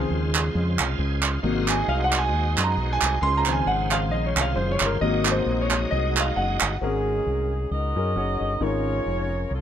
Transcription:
Already playing: C#3 D#3 F3 G#3 C4 F4 G#4 C5
0.11 D#2
0.35 clap
0.55 F2
0.78 C2 F5, clap
0.98 C#2 G#5
1.23 F5, clap
1.43 G#1 C3 F#3 G#3 A#3 D#4 F#4 C5
1.68 G#5, clap
1.88 C2 F5
2.04 F#5
2.13 clap
2.18 G#5
2.33 D#2
2.58 F#2 C6, clap
2.64 A#5
2.77 B1
2.93 G#5
3.02 C2, clap
3.21 C#2 C#3 G#3 F4 A#4 C6
3.27 C5
3.37 A#5
3.46 D#3 F3 C4, clap
3.52 G#5
3.61 G#5
3.66 G#1 F#5
3.91 F5, clap
4.11 A#1 D#5
4.26 C#5
4.36 C2, clap
4.41 F5
4.56 F#1 C5
4.71 C#5
4.80 G1, clap
4.86 A#4
5.00 G#1 C3 F#3 G#3 A#3 D#4 F#4 D#5
5.25 clap
5.31 C5
5.46 A#1
5.61 C#5
5.71 clap
5.91 C2 D#5
6.17 F5, clap
6.36 F#1 F#5
6.61 G1, clap
6.81 G#1 G#2 G#3 C4 C#4 D#4 F#4 G#4 A#4
6.87 C#4
7.26 C2
7.71 C#2 D#4 F#4 A#4 D#5
7.96 F#2 C#4 F#4 G#4 A#4
8.15 F#1 C#4 F#4 G#4 C#5
8.41 G1
8.60 G#1 G#2 C#4 D#4 F4 A#4 C#5
9.06 F1
9.51 C2 A#3 C#4 F4 A#4

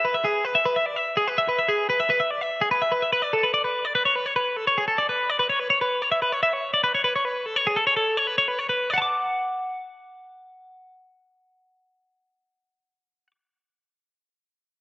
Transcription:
0.05 B4
0.14 E5
0.24 G#4
0.45 B4
0.55 E5
0.65 B4
0.76 E5
0.86 D5
0.96 E5
1.17 G#4
1.28 B4
1.38 E5
1.48 B4
1.59 E5
1.68 G#4
1.90 B4
2.00 E5
2.10 B4
2.20 E5
2.31 D5
2.41 E5
2.61 G#4
2.71 B4
2.82 E5
2.92 B4
3.02 E5
3.13 B4
3.22 D5
3.33 A4
3.43 B4
3.54 D5
3.64 B4
3.85 D5
3.95 B4
4.05 C#5
4.16 B4
4.26 C#5
4.36 B4
4.57 A4
4.67 C#5
4.78 G#4
4.88 A4
4.98 D5
5.09 B4
5.30 D5
5.39 B4
5.50 C#5
5.60 B4
5.70 C#5
5.81 B4
6.02 C#5
6.12 E5
6.22 B4
6.32 C#5
6.43 E5
6.53 C#5
6.74 D5
6.84 B4
6.95 C#5
7.04 B4
7.16 C#5
7.25 B4
7.46 A4
7.56 C#5
7.67 G#4
7.76 A4
7.87 C#5
7.97 A4
8.17 C#5
8.27 B4
8.38 C#5
8.48 B4
8.59 C#5
8.69 B4
8.90 D5 F#5
8.98 A5
9.02 D6

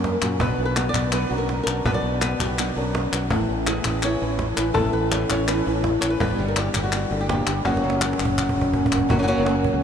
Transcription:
Already playing: F#2 A#3 A#4
0.04 G2, muted nylon-string guitar stroke, cajon bass, cajon slap
0.22 F#2 A#2 A#3 C#4 F#4, clap
0.39 B1 B2 F#3 B3 D4 F#4 B4, cajon bass, clap
0.49 B1
0.58 B1 B3 D4 F#4, cajon slap
0.65 B4
0.76 B3, muted nylon-string guitar stroke, cajon slap, clap
0.89 D5
0.94 B1 B3 D4 F#4, cajon bass, clap
1.12 B2 F#3 B3 D4 F#4 B4, cajon slap, clap
1.30 B1 F#2 B3 D4 F#4, cajon slap
1.38 A#4
1.49 muted nylon-string guitar stroke, cajon slap
1.63 B1 F#4 A#4, clap
1.68 B3 D4
1.85 B1 B2 F#3 B3 D4 F#4 B4, cajon bass, clap
1.94 B1 D5
2.03 B1 B3 D4 F#4
2.21 B3 B4, muted nylon-string guitar stroke, cajon slap, clap
2.39 B1 B3 D4 F#4, cajon bass, clap
2.45 G4
2.57 B2 F#3 B3 D4 F#4, cajon slap, clap
2.76 B1 F#2 B3 D4 F#4, cajon slap
2.95 muted nylon-string guitar stroke, cajon slap
3.12 B1 B3 D4 F#4, clap
3.30 A1 A2 E3 B3 C#4 E4, cajon bass, clap
3.40 A1
3.49 A1 B3 C#4 E4
3.66 E3 G#4, muted nylon-string guitar stroke, cajon slap, clap
3.84 A1 B3 C#4 E4 B4, cajon bass, clap
4.02 E3 B3 C#4 E4 C#5, clap
4.21 A1 E3 B3 C#4 E4, cajon slap
4.38 muted nylon-string guitar stroke, cajon bass, cajon slap
4.56 A1 B3 C#4 E4 B4, clap
4.74 A1 A2 E3 B3 C#4 E4 A4, cajon bass, clap
4.85 A1
4.93 A1 B3 C#4 E4 B4
5.11 E3 C#4, muted nylon-string guitar stroke, cajon slap, clap
5.28 A1 B3 C#4 E4 C#5, cajon bass, clap
5.46 E3 B3 C#4 E4 B4, cajon slap, clap
5.66 A1 E3 B3 C#4 E4, cajon slap
5.84 muted nylon-string guitar stroke, cajon bass, cajon slap
6.01 A1 B3 C#4 E4 C#5, clap
6.10 B4
6.20 G1 G2 B2 D3 G3 B3 D4 G4 B4, cajon bass, clap
6.29 G1 D3 G3 B3 G4
6.33 D3 G3 B3 G4
6.38 G1 B2 D3 G3 B3 G4
6.48 A#4
6.56 G3 B3 G4, cajon slap, clap
6.74 G1 G4, cajon bass, clap
6.84 F#4
6.92 muted nylon-string guitar stroke, cajon slap, clap
7.11 G1 D3, cajon slap
7.21 G4
7.28 A#2 D3 G3 B3 G4, cajon bass, cajon slap
7.46 G1 G2 G3 B3 G4, clap
7.64 F#1 F#2 C#3 F#3 A#3 C#4 F#4, cajon slap, clap
7.74 F#1 F#3 A#3 C#4 F#4, cajon slap
7.78 F#3 A#3 C#4 F#4
7.83 F#1 C#3 F#3 A#3 C#4 F#4
7.90 cajon slap
8.01 F#3 A#3 C#4 F#4, cajon slap, clap
8.13 cajon slap
8.19 F#1 C#4, clap
8.25 cajon bass
8.37 muted nylon-string guitar stroke, cajon bass, clap
8.49 cajon bass
8.56 F#1 C#3
8.61 cajon bass
8.73 F#3 A#3 C#4 F#4, cajon bass
8.86 cajon bass
8.92 F#1 A#3 C#4 F#4, clap
8.98 cajon bass
9.09 F#1 C#3 F#3 A#3 C#4 F#4, muted nylon-string guitar stroke, cajon bass
9.19 F#3 A#3 C#4 F#4
9.23 A#3 C#4 F#4
9.27 C#3 F#3 A#3 C#4 F#4
9.32 F#3 A#3 C#4 F#4
9.37 F#1 F#3 A#3 C#4 F#4
9.41 F#3 A#3 C#4 F#4
9.46 C#3 F#3 A#3 C#4 F#4, cajon slap
9.64 cajon bass
9.74 C#2

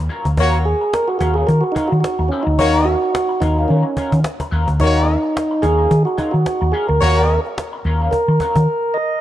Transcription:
0.09 F#3 C#4 F4 A#4, cajon slap
0.25 D2, muted clean electric guitar stroke, cajon bass
0.37 D#2 F#3 A#3 C#4 F4 F#4 A#4 C#5, cajon bass
0.65 G#4, cajon slap
0.81 muted clean electric guitar stroke, cajon slap
0.93 A#4, muted clean electric guitar stroke, cajon slap
1.08 F#4, muted clean electric guitar stroke, cajon slap
1.19 D#2 F#3 C#4 F4 F#4 A#4, cajon bass
1.34 F#3 C#4 F4 G#4 A#4, cajon slap
1.47 D#3 A#4, cajon bass
1.61 F#4, muted clean electric guitar stroke, cajon slap
1.72 F#3 D#4
1.76 C#4 F4 A#4, muted fingered electric bass stroke, cajon bass
1.88 F#4, muted clean electric guitar stroke
1.92 D#3, cajon slap
2.00 F#4, muted clean electric guitar stroke, muted fingered electric bass stroke, cajon slap
2.19 D#2, muted clean electric guitar stroke, cajon slap
2.29 F#3 C#4 F4, cajon slap
2.33 A#4
2.43 D2 D#4, muted clean electric guitar stroke
2.47 cajon slap
2.58 D#2 F#3 A#3 C#4 F4 F#4 A#4 C#5, cajon bass
2.85 F#4
3.02 muted clean electric guitar stroke, cajon slap
3.13 muted clean electric guitar stroke, cajon slap
3.29 muted clean electric guitar stroke, cajon slap
3.40 D#2 F#3 C#4 D#4 F4 A#4, cajon bass
3.57 F#3 C#4 F4 A#4, cajon slap
3.68 D#3 F#3 C#4 F4 A#4, cajon slap
3.85 muted clean electric guitar stroke, cajon slap
3.97 F#3 C#4 F4 A#4, muted fingered electric bass stroke, cajon bass
4.12 D#3, muted clean electric guitar stroke, cajon bass
4.24 muted clean electric guitar stroke, cajon slap
4.40 muted clean electric guitar stroke, cajon bass
4.51 D#2 F#3 C#4 F4 A#4, cajon slap
4.67 D2, muted clean electric guitar stroke, cajon bass
4.80 D#2 F#3 A#3 C#4 D#4 F4 F#4 A#4 C#5, cajon bass
5.08 cajon slap
5.23 muted clean electric guitar stroke, cajon slap
5.35 muted clean electric guitar stroke, cajon slap
5.51 muted clean electric guitar stroke, cajon slap
5.62 D#2 F#3 C#4 F4 G#4 A#4, cajon bass
5.79 F#3 C#4 F4 A#4, cajon slap
5.91 D#3, cajon bass
6.05 F#4, muted clean electric guitar stroke, cajon slap
6.18 F#3 C#4 D#4 F4 A#4, muted fingered electric bass stroke, cajon bass
6.31 D#3 F#4, muted clean electric guitar stroke, cajon slap
6.45 muted clean electric guitar stroke, muted fingered electric bass stroke, cajon slap
6.61 D#2, muted clean electric guitar stroke, cajon slap
6.72 F#3 C#4 F4 G#4 A#4, cajon slap
6.89 D2 A#4, muted clean electric guitar stroke, cajon slap
7.01 D#2 F#3 A#3 C#4 F4 F#4 A#4 C#5, cajon bass
7.30 cajon slap
7.45 muted clean electric guitar stroke, cajon slap
7.57 muted clean electric guitar stroke, cajon slap
7.73 muted clean electric guitar stroke
7.84 D#2 F#3 C#4 F4 A#4, cajon slap
8.00 F#3 C#4 F4 A#4, cajon slap
8.11 A#4, cajon bass
8.28 D#3, muted clean electric guitar stroke
8.40 F#3 C#4 F4 A#4, cajon bass
8.56 D#3, muted clean electric guitar stroke, cajon bass
8.94 D#5

